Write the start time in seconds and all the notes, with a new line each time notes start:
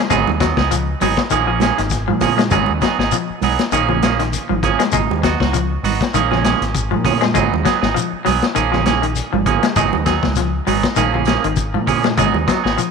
0.10 G#1 F#3 G#3 B3 D#4 G#4, kick, snare, closed hi-hat, low conga, shekere
0.27 D#2, high conga
0.40 F#3 B3 D#4, muted clean electric guitar stroke, kick, snare, closed hi-hat, shekere
0.57 C#2 B3 D#4 G#4, kick, snare, high conga
0.71 F3, closed hi-hat, shekere
1.01 G#1 F#3 B3 D#4 G#4, snare, open hi-hat, high conga, shekere
1.17 kick, snare, closed hi-hat
1.30 A#1 D#3 F3 A#3 C#4 G#4, closed hi-hat, shekere
1.47 F3 A#3 C#4 G#4
1.60 F3 A#3 C#4 G#4, snare, closed hi-hat, high conga, shekere
1.78 G#1 D#3, snare, closed hi-hat
1.90 kick, snare, closed hi-hat, shekere
2.08 A#2 F3, high conga
2.21 F3 A#3 C#4 G#4, kick, snare, open hi-hat, low conga, shekere
2.37 G#3, snare, closed hi-hat, high conga
2.51 G#1 F#3 G#3 B3 D#4 G#4, kick, closed hi-hat, low conga, shekere
2.66 D#2, high conga
2.81 F#3 B3 D#4 G#4, kick, snare, closed hi-hat, shekere
2.98 G#1 B3 D#4 G#4, snare
3.12 F3, closed hi-hat, shekere
3.30 muted fingered electric bass stroke
3.41 B1 F#3 B3 D#4 G#4, open hi-hat, high conga, shekere
3.59 snare, closed hi-hat
3.72 A#1 D#3 F3 A#3 C#4 G#4, closed hi-hat, shekere
3.89 F3 A#3 C#4 G#4, low conga
4.02 F3 A#3 C#4 G#4, snare, closed hi-hat, high conga, shekere
4.19 D#3, snare, closed hi-hat
4.33 closed hi-hat, shekere
4.49 G#1 F3, high conga
4.63 F3 A#3 C#4 G#4, kick, closed hi-hat, low conga, shekere
4.79 G#3, snare, closed hi-hat
4.92 G#1 G#3 D#4, muted clean electric guitar stroke, kick, closed hi-hat, low conga, shekere
5.10 D#2, high conga
5.23 F#3 B3 D#4 F#4, kick, snare, closed hi-hat, shekere
5.40 C#2 D#4 F#4, kick, snare, high conga
5.53 F3, closed hi-hat, shekere
5.83 G#1 B3 D#4 F#4, open hi-hat, high conga, shekere
6.01 kick, snare, closed hi-hat
6.14 A#1 D#3 F3 A#3 C#4 G#4, closed hi-hat, high conga, shekere
6.31 F3 A#3 C#4 G#4, snare, low conga
6.44 F3 A#3 C#4 G#4, snare, closed hi-hat, high conga, shekere
6.61 G#1, snare, closed hi-hat
6.74 kick, closed hi-hat, shekere
6.91 A#2 F3, high conga
7.04 F3 C#4 G#4, muted clean electric guitar stroke, kick, snare, open hi-hat, low conga, shekere
7.21 G#3, snare, closed hi-hat, high conga
7.34 G#1 F#3 G#3 B3 D#4 G#4, kick, snare, closed hi-hat, low conga, shekere
7.52 D#2, high conga
7.65 F#3 B3 D#4 G#4, kick, snare, closed hi-hat, shekere
7.81 G#1 B3 D#4 G#4, snare, high conga
7.94 F3, closed hi-hat, shekere
8.13 muted fingered electric bass stroke
8.25 B1 F#3 B3 D#4 G#4, snare, open hi-hat, high conga, shekere
8.42 snare, closed hi-hat
8.55 A#1 D#3 F3 A#3 C#4 G#4, closed hi-hat, shekere
8.72 F3 A#3 C#4 G#4, snare, low conga
8.86 A#3 C#4 G#4, snare, closed hi-hat, high conga, shekere
9.02 D#3, closed hi-hat
9.16 closed hi-hat, shekere
9.32 G#1 F3, high conga
9.46 F3 A#3 C#4 G#4, kick, closed hi-hat, low conga, shekere
9.63 G#3, snare, closed hi-hat
9.76 G#1 F#3 G#3 B3 D#4 G#4, kick, snare, closed hi-hat, low conga, shekere
9.93 D#2, high conga
10.06 F#3 B3 D#4 G#4, kick, snare, closed hi-hat, shekere
10.23 C#2, kick, snare, high conga
10.36 F3, snare, closed hi-hat, shekere
10.67 G#1 F#3 B3 D#4 G#4, open hi-hat, high conga, shekere
10.83 kick, snare, closed hi-hat
10.96 A#1 D#3 F3 A#3 C#4 G#4, closed hi-hat, high conga, shekere
11.13 F3 A#3 C#4 G#4, low conga
11.25 F3 A#3 C#4 G#4, snare, closed hi-hat, high conga, shekere
11.44 G#1 D#3, closed hi-hat
11.56 kick, closed hi-hat, shekere
11.74 A#2 F3, high conga
11.87 F3 A#3 C#4 G#4, kick, open hi-hat, low conga, shekere
12.04 G#3, snare, closed hi-hat, high conga
12.17 G#1 F#3 G#3 B3 D#4 G#4, kick, closed hi-hat, low conga, shekere
12.34 D#2, high conga
12.47 F#3 B3 D#4, muted clean electric guitar stroke, kick, snare, closed hi-hat, shekere
12.64 G#1 B3 D#4 G#4, snare
12.78 F3, closed hi-hat, shekere